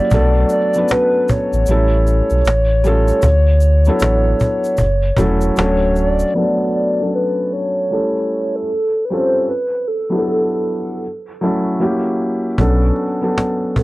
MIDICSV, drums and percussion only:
0, 0, Header, 1, 3, 480
1, 0, Start_track
1, 0, Key_signature, 2, "major"
1, 0, Tempo, 779221
1, 69, Time_signature, 4, 2, 24, 8
1, 8521, End_track
2, 0, Start_track
2, 0, Title_t, "Cajon"
2, 70, Note_on_c, 9, 36, 99
2, 132, Note_off_c, 9, 36, 0
2, 233, Note_on_c, 9, 38, 26
2, 295, Note_off_c, 9, 38, 0
2, 303, Note_on_c, 9, 38, 45
2, 365, Note_off_c, 9, 38, 0
2, 561, Note_on_c, 9, 38, 108
2, 623, Note_off_c, 9, 38, 0
2, 695, Note_on_c, 9, 38, 26
2, 757, Note_off_c, 9, 38, 0
2, 798, Note_on_c, 9, 36, 90
2, 859, Note_off_c, 9, 36, 0
2, 935, Note_on_c, 9, 38, 26
2, 996, Note_off_c, 9, 38, 0
2, 1038, Note_on_c, 9, 38, 36
2, 1100, Note_off_c, 9, 38, 0
2, 1183, Note_on_c, 9, 38, 25
2, 1245, Note_off_c, 9, 38, 0
2, 1283, Note_on_c, 9, 38, 31
2, 1344, Note_off_c, 9, 38, 0
2, 1524, Note_on_c, 9, 38, 107
2, 1586, Note_off_c, 9, 38, 0
2, 1669, Note_on_c, 9, 38, 28
2, 1730, Note_off_c, 9, 38, 0
2, 1753, Note_on_c, 9, 38, 37
2, 1815, Note_off_c, 9, 38, 0
2, 1989, Note_on_c, 9, 36, 104
2, 2051, Note_off_c, 9, 36, 0
2, 2152, Note_on_c, 9, 38, 26
2, 2214, Note_off_c, 9, 38, 0
2, 2221, Note_on_c, 9, 38, 41
2, 2283, Note_off_c, 9, 38, 0
2, 2478, Note_on_c, 9, 38, 103
2, 2540, Note_off_c, 9, 38, 0
2, 2610, Note_on_c, 9, 38, 27
2, 2672, Note_off_c, 9, 38, 0
2, 2716, Note_on_c, 9, 36, 85
2, 2778, Note_off_c, 9, 36, 0
2, 2852, Note_on_c, 9, 38, 26
2, 2913, Note_off_c, 9, 38, 0
2, 2946, Note_on_c, 9, 36, 83
2, 3008, Note_off_c, 9, 36, 0
2, 3102, Note_on_c, 9, 38, 27
2, 3163, Note_off_c, 9, 38, 0
2, 3182, Note_on_c, 9, 36, 103
2, 3244, Note_off_c, 9, 36, 0
2, 3442, Note_on_c, 9, 38, 107
2, 3503, Note_off_c, 9, 38, 0
2, 3588, Note_on_c, 9, 38, 27
2, 3649, Note_off_c, 9, 38, 0
2, 3673, Note_on_c, 9, 38, 38
2, 3735, Note_off_c, 9, 38, 0
2, 7750, Note_on_c, 9, 36, 92
2, 7812, Note_off_c, 9, 36, 0
2, 7983, Note_on_c, 9, 38, 39
2, 8045, Note_off_c, 9, 38, 0
2, 8240, Note_on_c, 9, 38, 95
2, 8301, Note_off_c, 9, 38, 0
2, 8477, Note_on_c, 9, 36, 85
2, 8521, Note_off_c, 9, 36, 0
2, 8521, End_track
3, 0, Start_track
3, 0, Title_t, "Drums"
3, 64, Note_on_c, 9, 82, 68
3, 126, Note_off_c, 9, 82, 0
3, 303, Note_on_c, 9, 82, 56
3, 365, Note_off_c, 9, 82, 0
3, 454, Note_on_c, 9, 82, 45
3, 515, Note_off_c, 9, 82, 0
3, 543, Note_on_c, 9, 82, 77
3, 605, Note_off_c, 9, 82, 0
3, 791, Note_on_c, 9, 82, 41
3, 852, Note_off_c, 9, 82, 0
3, 942, Note_on_c, 9, 82, 46
3, 1004, Note_off_c, 9, 82, 0
3, 1023, Note_on_c, 9, 82, 63
3, 1085, Note_off_c, 9, 82, 0
3, 1275, Note_on_c, 9, 82, 53
3, 1336, Note_off_c, 9, 82, 0
3, 1416, Note_on_c, 9, 82, 47
3, 1477, Note_off_c, 9, 82, 0
3, 1509, Note_on_c, 9, 82, 61
3, 1571, Note_off_c, 9, 82, 0
3, 1751, Note_on_c, 9, 82, 45
3, 1813, Note_off_c, 9, 82, 0
3, 1895, Note_on_c, 9, 82, 51
3, 1957, Note_off_c, 9, 82, 0
3, 1983, Note_on_c, 9, 82, 68
3, 2045, Note_off_c, 9, 82, 0
3, 2220, Note_on_c, 9, 82, 55
3, 2282, Note_off_c, 9, 82, 0
3, 2371, Note_on_c, 9, 82, 46
3, 2432, Note_off_c, 9, 82, 0
3, 2461, Note_on_c, 9, 82, 81
3, 2523, Note_off_c, 9, 82, 0
3, 2708, Note_on_c, 9, 82, 45
3, 2770, Note_off_c, 9, 82, 0
3, 2859, Note_on_c, 9, 82, 44
3, 2921, Note_off_c, 9, 82, 0
3, 2939, Note_on_c, 9, 82, 63
3, 3000, Note_off_c, 9, 82, 0
3, 3191, Note_on_c, 9, 82, 55
3, 3253, Note_off_c, 9, 82, 0
3, 3333, Note_on_c, 9, 82, 48
3, 3395, Note_off_c, 9, 82, 0
3, 3427, Note_on_c, 9, 82, 61
3, 3488, Note_off_c, 9, 82, 0
3, 3671, Note_on_c, 9, 82, 42
3, 3732, Note_off_c, 9, 82, 0
3, 3815, Note_on_c, 9, 82, 53
3, 3876, Note_off_c, 9, 82, 0
3, 8521, End_track
0, 0, End_of_file